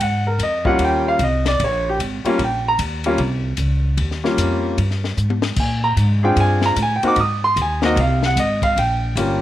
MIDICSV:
0, 0, Header, 1, 5, 480
1, 0, Start_track
1, 0, Tempo, 397878
1, 966, Time_signature, 4, 2, 24, 8
1, 11359, End_track
2, 0, Start_track
2, 0, Title_t, "Grand piano"
2, 0, Program_c, 0, 0
2, 20, Note_on_c, 0, 78, 82
2, 313, Note_off_c, 0, 78, 0
2, 324, Note_on_c, 0, 70, 66
2, 485, Note_off_c, 0, 70, 0
2, 519, Note_on_c, 0, 75, 81
2, 779, Note_on_c, 0, 55, 75
2, 784, Note_on_c, 0, 61, 68
2, 785, Note_on_c, 0, 58, 62
2, 788, Note_on_c, 0, 65, 86
2, 803, Note_off_c, 0, 75, 0
2, 807, Note_on_c, 0, 78, 96
2, 967, Note_off_c, 0, 78, 0
2, 1020, Note_on_c, 0, 79, 88
2, 1294, Note_off_c, 0, 79, 0
2, 1307, Note_on_c, 0, 77, 97
2, 1404, Note_off_c, 0, 55, 0
2, 1407, Note_off_c, 0, 58, 0
2, 1407, Note_off_c, 0, 61, 0
2, 1409, Note_off_c, 0, 65, 0
2, 1457, Note_off_c, 0, 77, 0
2, 1491, Note_on_c, 0, 75, 76
2, 1769, Note_off_c, 0, 75, 0
2, 1781, Note_on_c, 0, 74, 90
2, 1934, Note_off_c, 0, 74, 0
2, 1980, Note_on_c, 0, 73, 83
2, 2254, Note_off_c, 0, 73, 0
2, 2285, Note_on_c, 0, 67, 84
2, 2373, Note_off_c, 0, 67, 0
2, 2710, Note_on_c, 0, 55, 79
2, 2724, Note_on_c, 0, 58, 74
2, 2728, Note_on_c, 0, 61, 78
2, 2733, Note_on_c, 0, 65, 90
2, 2867, Note_off_c, 0, 55, 0
2, 2874, Note_off_c, 0, 58, 0
2, 2876, Note_off_c, 0, 61, 0
2, 2878, Note_off_c, 0, 65, 0
2, 2947, Note_on_c, 0, 79, 72
2, 3218, Note_off_c, 0, 79, 0
2, 3238, Note_on_c, 0, 82, 102
2, 3383, Note_off_c, 0, 82, 0
2, 3689, Note_on_c, 0, 55, 78
2, 3690, Note_on_c, 0, 58, 71
2, 3693, Note_on_c, 0, 61, 71
2, 3697, Note_on_c, 0, 65, 81
2, 3837, Note_off_c, 0, 55, 0
2, 3837, Note_off_c, 0, 58, 0
2, 3839, Note_off_c, 0, 61, 0
2, 3840, Note_off_c, 0, 65, 0
2, 5112, Note_on_c, 0, 55, 66
2, 5115, Note_on_c, 0, 58, 64
2, 5121, Note_on_c, 0, 61, 58
2, 5133, Note_on_c, 0, 65, 77
2, 5731, Note_off_c, 0, 55, 0
2, 5733, Note_off_c, 0, 58, 0
2, 5735, Note_off_c, 0, 61, 0
2, 5741, Note_off_c, 0, 65, 0
2, 6753, Note_on_c, 0, 80, 69
2, 7041, Note_off_c, 0, 80, 0
2, 7044, Note_on_c, 0, 82, 100
2, 7145, Note_off_c, 0, 82, 0
2, 7515, Note_on_c, 0, 68, 75
2, 7525, Note_on_c, 0, 60, 66
2, 7527, Note_on_c, 0, 62, 60
2, 7531, Note_on_c, 0, 65, 75
2, 7538, Note_on_c, 0, 79, 92
2, 7694, Note_off_c, 0, 79, 0
2, 7724, Note_on_c, 0, 80, 92
2, 8007, Note_off_c, 0, 80, 0
2, 8030, Note_on_c, 0, 82, 101
2, 8133, Note_off_c, 0, 68, 0
2, 8138, Note_off_c, 0, 60, 0
2, 8139, Note_off_c, 0, 62, 0
2, 8141, Note_off_c, 0, 65, 0
2, 8180, Note_off_c, 0, 82, 0
2, 8233, Note_on_c, 0, 80, 89
2, 8357, Note_off_c, 0, 80, 0
2, 8395, Note_on_c, 0, 79, 78
2, 8483, Note_on_c, 0, 58, 68
2, 8489, Note_on_c, 0, 60, 73
2, 8499, Note_on_c, 0, 63, 64
2, 8500, Note_on_c, 0, 66, 78
2, 8518, Note_off_c, 0, 79, 0
2, 8537, Note_on_c, 0, 86, 97
2, 8634, Note_off_c, 0, 58, 0
2, 8637, Note_off_c, 0, 60, 0
2, 8642, Note_off_c, 0, 63, 0
2, 8642, Note_off_c, 0, 66, 0
2, 8668, Note_off_c, 0, 86, 0
2, 8692, Note_on_c, 0, 87, 86
2, 8971, Note_off_c, 0, 87, 0
2, 8978, Note_on_c, 0, 84, 103
2, 9134, Note_off_c, 0, 84, 0
2, 9188, Note_on_c, 0, 80, 79
2, 9439, Note_on_c, 0, 58, 78
2, 9443, Note_on_c, 0, 60, 69
2, 9449, Note_on_c, 0, 63, 71
2, 9452, Note_on_c, 0, 66, 82
2, 9459, Note_off_c, 0, 80, 0
2, 9471, Note_on_c, 0, 75, 99
2, 9592, Note_off_c, 0, 58, 0
2, 9594, Note_off_c, 0, 60, 0
2, 9597, Note_off_c, 0, 63, 0
2, 9598, Note_off_c, 0, 66, 0
2, 9620, Note_off_c, 0, 75, 0
2, 9649, Note_on_c, 0, 77, 80
2, 9930, Note_off_c, 0, 77, 0
2, 9960, Note_on_c, 0, 78, 101
2, 10105, Note_off_c, 0, 78, 0
2, 10127, Note_on_c, 0, 75, 90
2, 10408, Note_off_c, 0, 75, 0
2, 10412, Note_on_c, 0, 77, 102
2, 10571, Note_off_c, 0, 77, 0
2, 10600, Note_on_c, 0, 79, 81
2, 11062, Note_on_c, 0, 55, 58
2, 11064, Note_on_c, 0, 58, 51
2, 11069, Note_on_c, 0, 65, 61
2, 11072, Note_on_c, 0, 61, 54
2, 11359, Note_off_c, 0, 55, 0
2, 11359, Note_off_c, 0, 58, 0
2, 11359, Note_off_c, 0, 61, 0
2, 11359, Note_off_c, 0, 65, 0
2, 11359, Note_off_c, 0, 79, 0
2, 11359, End_track
3, 0, Start_track
3, 0, Title_t, "Upright bass"
3, 0, Program_c, 1, 32
3, 0, Note_on_c, 1, 44, 93
3, 460, Note_off_c, 1, 44, 0
3, 465, Note_on_c, 1, 41, 83
3, 941, Note_off_c, 1, 41, 0
3, 949, Note_on_c, 1, 39, 81
3, 1423, Note_off_c, 1, 39, 0
3, 1437, Note_on_c, 1, 36, 95
3, 1908, Note_off_c, 1, 36, 0
3, 1926, Note_on_c, 1, 34, 95
3, 2392, Note_off_c, 1, 34, 0
3, 2404, Note_on_c, 1, 32, 81
3, 2693, Note_off_c, 1, 32, 0
3, 2880, Note_on_c, 1, 34, 84
3, 3349, Note_off_c, 1, 34, 0
3, 3362, Note_on_c, 1, 39, 86
3, 3828, Note_off_c, 1, 39, 0
3, 3835, Note_on_c, 1, 36, 96
3, 4307, Note_off_c, 1, 36, 0
3, 4316, Note_on_c, 1, 37, 82
3, 4788, Note_off_c, 1, 37, 0
3, 4792, Note_on_c, 1, 39, 91
3, 5266, Note_off_c, 1, 39, 0
3, 5274, Note_on_c, 1, 41, 88
3, 5746, Note_off_c, 1, 41, 0
3, 5761, Note_on_c, 1, 43, 94
3, 6230, Note_off_c, 1, 43, 0
3, 6237, Note_on_c, 1, 44, 84
3, 6704, Note_off_c, 1, 44, 0
3, 6711, Note_on_c, 1, 46, 86
3, 7185, Note_off_c, 1, 46, 0
3, 7196, Note_on_c, 1, 44, 90
3, 7667, Note_off_c, 1, 44, 0
3, 7675, Note_on_c, 1, 43, 96
3, 8147, Note_off_c, 1, 43, 0
3, 8157, Note_on_c, 1, 45, 89
3, 8450, Note_off_c, 1, 45, 0
3, 8643, Note_on_c, 1, 44, 88
3, 9111, Note_off_c, 1, 44, 0
3, 9122, Note_on_c, 1, 39, 98
3, 9591, Note_off_c, 1, 39, 0
3, 9604, Note_on_c, 1, 36, 103
3, 10072, Note_off_c, 1, 36, 0
3, 10085, Note_on_c, 1, 32, 87
3, 10552, Note_off_c, 1, 32, 0
3, 10570, Note_on_c, 1, 34, 94
3, 11035, Note_off_c, 1, 34, 0
3, 11045, Note_on_c, 1, 31, 98
3, 11359, Note_off_c, 1, 31, 0
3, 11359, End_track
4, 0, Start_track
4, 0, Title_t, "Muted upright bass strokes"
4, 2702, Note_on_c, 9, 29, 38
4, 2822, Note_off_c, 9, 29, 0
4, 8482, Note_on_c, 9, 29, 42
4, 8602, Note_off_c, 9, 29, 0
4, 11359, End_track
5, 0, Start_track
5, 0, Title_t, "Drums"
5, 6, Note_on_c, 9, 51, 74
5, 127, Note_off_c, 9, 51, 0
5, 473, Note_on_c, 9, 36, 20
5, 477, Note_on_c, 9, 44, 57
5, 477, Note_on_c, 9, 51, 68
5, 593, Note_off_c, 9, 36, 0
5, 597, Note_off_c, 9, 44, 0
5, 597, Note_off_c, 9, 51, 0
5, 785, Note_on_c, 9, 36, 62
5, 905, Note_off_c, 9, 36, 0
5, 952, Note_on_c, 9, 51, 64
5, 955, Note_on_c, 9, 36, 17
5, 1072, Note_off_c, 9, 51, 0
5, 1076, Note_off_c, 9, 36, 0
5, 1438, Note_on_c, 9, 36, 29
5, 1438, Note_on_c, 9, 44, 54
5, 1438, Note_on_c, 9, 51, 60
5, 1559, Note_off_c, 9, 36, 0
5, 1559, Note_off_c, 9, 44, 0
5, 1559, Note_off_c, 9, 51, 0
5, 1757, Note_on_c, 9, 38, 64
5, 1760, Note_on_c, 9, 51, 55
5, 1878, Note_off_c, 9, 38, 0
5, 1880, Note_off_c, 9, 51, 0
5, 1923, Note_on_c, 9, 36, 26
5, 1927, Note_on_c, 9, 51, 71
5, 2043, Note_off_c, 9, 36, 0
5, 2048, Note_off_c, 9, 51, 0
5, 2405, Note_on_c, 9, 36, 22
5, 2413, Note_on_c, 9, 44, 57
5, 2413, Note_on_c, 9, 51, 65
5, 2525, Note_off_c, 9, 36, 0
5, 2534, Note_off_c, 9, 44, 0
5, 2534, Note_off_c, 9, 51, 0
5, 2719, Note_on_c, 9, 51, 51
5, 2840, Note_off_c, 9, 51, 0
5, 2883, Note_on_c, 9, 36, 27
5, 2885, Note_on_c, 9, 51, 64
5, 3003, Note_off_c, 9, 36, 0
5, 3006, Note_off_c, 9, 51, 0
5, 3361, Note_on_c, 9, 36, 22
5, 3363, Note_on_c, 9, 44, 63
5, 3363, Note_on_c, 9, 51, 81
5, 3481, Note_off_c, 9, 36, 0
5, 3484, Note_off_c, 9, 44, 0
5, 3484, Note_off_c, 9, 51, 0
5, 3667, Note_on_c, 9, 51, 56
5, 3787, Note_off_c, 9, 51, 0
5, 3837, Note_on_c, 9, 51, 60
5, 3839, Note_on_c, 9, 36, 23
5, 3958, Note_off_c, 9, 51, 0
5, 3960, Note_off_c, 9, 36, 0
5, 4306, Note_on_c, 9, 44, 55
5, 4306, Note_on_c, 9, 51, 63
5, 4318, Note_on_c, 9, 36, 22
5, 4427, Note_off_c, 9, 44, 0
5, 4427, Note_off_c, 9, 51, 0
5, 4439, Note_off_c, 9, 36, 0
5, 4795, Note_on_c, 9, 51, 62
5, 4800, Note_on_c, 9, 36, 23
5, 4916, Note_off_c, 9, 51, 0
5, 4920, Note_off_c, 9, 36, 0
5, 4962, Note_on_c, 9, 38, 29
5, 5083, Note_off_c, 9, 38, 0
5, 5126, Note_on_c, 9, 38, 45
5, 5247, Note_off_c, 9, 38, 0
5, 5282, Note_on_c, 9, 36, 20
5, 5285, Note_on_c, 9, 44, 64
5, 5285, Note_on_c, 9, 51, 70
5, 5403, Note_off_c, 9, 36, 0
5, 5405, Note_off_c, 9, 44, 0
5, 5405, Note_off_c, 9, 51, 0
5, 5762, Note_on_c, 9, 36, 20
5, 5766, Note_on_c, 9, 51, 60
5, 5883, Note_off_c, 9, 36, 0
5, 5887, Note_off_c, 9, 51, 0
5, 5919, Note_on_c, 9, 38, 28
5, 6039, Note_off_c, 9, 38, 0
5, 6083, Note_on_c, 9, 38, 43
5, 6204, Note_off_c, 9, 38, 0
5, 6242, Note_on_c, 9, 44, 63
5, 6362, Note_off_c, 9, 44, 0
5, 6397, Note_on_c, 9, 48, 56
5, 6518, Note_off_c, 9, 48, 0
5, 6541, Note_on_c, 9, 38, 86
5, 6662, Note_off_c, 9, 38, 0
5, 6711, Note_on_c, 9, 49, 73
5, 6717, Note_on_c, 9, 36, 66
5, 6832, Note_off_c, 9, 49, 0
5, 6837, Note_off_c, 9, 36, 0
5, 7197, Note_on_c, 9, 36, 18
5, 7202, Note_on_c, 9, 44, 61
5, 7202, Note_on_c, 9, 51, 64
5, 7318, Note_off_c, 9, 36, 0
5, 7323, Note_off_c, 9, 44, 0
5, 7323, Note_off_c, 9, 51, 0
5, 7676, Note_on_c, 9, 36, 22
5, 7679, Note_on_c, 9, 51, 68
5, 7796, Note_off_c, 9, 36, 0
5, 7800, Note_off_c, 9, 51, 0
5, 7982, Note_on_c, 9, 38, 62
5, 8102, Note_off_c, 9, 38, 0
5, 8159, Note_on_c, 9, 36, 26
5, 8159, Note_on_c, 9, 44, 61
5, 8159, Note_on_c, 9, 51, 72
5, 8279, Note_off_c, 9, 36, 0
5, 8280, Note_off_c, 9, 44, 0
5, 8280, Note_off_c, 9, 51, 0
5, 8479, Note_on_c, 9, 51, 53
5, 8600, Note_off_c, 9, 51, 0
5, 8637, Note_on_c, 9, 51, 65
5, 8642, Note_on_c, 9, 36, 22
5, 8758, Note_off_c, 9, 51, 0
5, 8763, Note_off_c, 9, 36, 0
5, 9125, Note_on_c, 9, 36, 26
5, 9128, Note_on_c, 9, 44, 70
5, 9128, Note_on_c, 9, 51, 68
5, 9246, Note_off_c, 9, 36, 0
5, 9249, Note_off_c, 9, 44, 0
5, 9249, Note_off_c, 9, 51, 0
5, 9432, Note_on_c, 9, 38, 65
5, 9553, Note_off_c, 9, 38, 0
5, 9610, Note_on_c, 9, 36, 28
5, 9616, Note_on_c, 9, 51, 68
5, 9731, Note_off_c, 9, 36, 0
5, 9736, Note_off_c, 9, 51, 0
5, 9924, Note_on_c, 9, 38, 59
5, 10044, Note_off_c, 9, 38, 0
5, 10091, Note_on_c, 9, 36, 25
5, 10096, Note_on_c, 9, 44, 66
5, 10096, Note_on_c, 9, 51, 77
5, 10212, Note_off_c, 9, 36, 0
5, 10216, Note_off_c, 9, 44, 0
5, 10216, Note_off_c, 9, 51, 0
5, 10400, Note_on_c, 9, 36, 58
5, 10407, Note_on_c, 9, 51, 59
5, 10521, Note_off_c, 9, 36, 0
5, 10527, Note_off_c, 9, 51, 0
5, 10575, Note_on_c, 9, 36, 21
5, 10586, Note_on_c, 9, 51, 66
5, 10695, Note_off_c, 9, 36, 0
5, 10706, Note_off_c, 9, 51, 0
5, 11053, Note_on_c, 9, 36, 26
5, 11062, Note_on_c, 9, 44, 56
5, 11062, Note_on_c, 9, 51, 81
5, 11173, Note_off_c, 9, 36, 0
5, 11182, Note_off_c, 9, 44, 0
5, 11182, Note_off_c, 9, 51, 0
5, 11359, End_track
0, 0, End_of_file